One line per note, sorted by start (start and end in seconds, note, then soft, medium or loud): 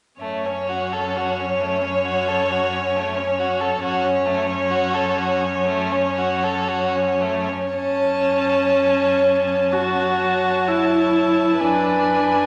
0.21 3.79 F#2 soft
0.21 0.47 A3 soft
0.21 3.79 C#4 soft
0.21 3.79 C#5 soft
0.46 0.71 C#4 soft
0.69 0.94 F#4 soft
0.93 1.18 A4 soft
1.17 1.40 F#4 soft
1.39 1.63 C#4 soft
1.61 1.83 A3 soft
1.82 2.04 C#4 soft
2.05 2.29 F#4 soft
2.28 2.53 A4 soft
2.51 2.75 F#4 soft
2.73 2.97 C#4 soft
2.96 3.19 A3 soft
3.18 3.41 C#4 soft
3.39 3.62 F#4 soft
3.61 3.82 A4 soft
3.82 7.50 F#2 soft
3.82 7.50 C#4 soft
3.82 4.06 F#4 soft
3.82 7.50 C#5 soft
4.05 4.27 C#4 soft
4.26 4.49 A3 soft
4.48 4.72 C#4 soft
4.70 4.96 F#4 soft
4.94 5.19 A4 soft
5.18 5.43 F#4 soft
5.41 5.66 C#4 soft
5.67 5.93 A3 soft
5.92 6.19 C#4 soft
6.18 6.45 F#4 soft
6.44 6.70 A4 soft
6.68 6.97 F#4 soft
6.95 7.23 C#4 soft
7.21 7.50 A3 soft
7.49 7.73 C#4 soft
7.74 11.55 F#2 soft
7.74 9.74 C#4 medium
7.74 9.68 C#5 soft
7.74 9.69 A5 soft
9.72 10.69 F#4 soft
9.72 11.55 C#5 soft
9.72 11.61 A5 soft
10.68 11.62 E4 soft
11.58 12.46 F#2 soft
11.58 12.46 D4 soft
11.58 12.46 B4 soft
11.58 12.46 G#5 soft